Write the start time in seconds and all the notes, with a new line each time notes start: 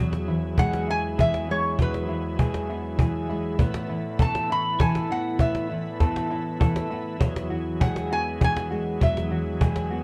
Already playing: E2 F#3 E4 G#4
0.13 cajon slap
0.28 E3 E4
0.58 G#3 G#4 F#5, cajon bass
0.73 cajon slap
0.89 B3 E4 G#5
1.18 E3 G#4 E5, cajon bass
1.34 cajon slap
1.49 G#3 E4 C#5
1.78 E2 F#3 B4, cajon bass
1.94 cajon slap
2.08 E3 E4
2.39 G#3 G#4, cajon bass
2.54 cajon slap
2.70 B3 E4
2.99 E3 G#4, cajon bass
3.30 G#3 E4
3.59 A2 A3 B3 B4, cajon bass
3.74 cajon slap
3.89 E3 E4
4.19 B3 A4 A5, cajon bass
4.35 cajon slap
4.50 E4 B5
4.79 E3 A4 G#5, cajon bass
4.95 cajon slap
5.11 B3 E4 F#5
5.39 A2 B3 E5, cajon bass
5.55 cajon slap
5.70 E3 E4
6.00 B3 A4, cajon bass, cajon slap
6.16 cajon slap
6.30 E4
6.60 E3 A4, cajon bass
6.76 cajon slap
6.90 B3 E4
7.20 E2 F#3 G#4, cajon bass
7.36 cajon slap
7.50 E3 F#4
7.80 G#3 G#4 F#5, cajon bass
7.96 cajon slap
8.11 B3 F#4 G#5
8.41 E3 G#4 G#5, cajon bass
8.56 cajon slap
8.71 G#3 F#4
9.01 E2 F#3 E5, cajon bass
9.17 cajon slap
9.30 E3 F#4
9.61 G#3 G#4, cajon bass
9.76 cajon slap
9.91 B3 F#4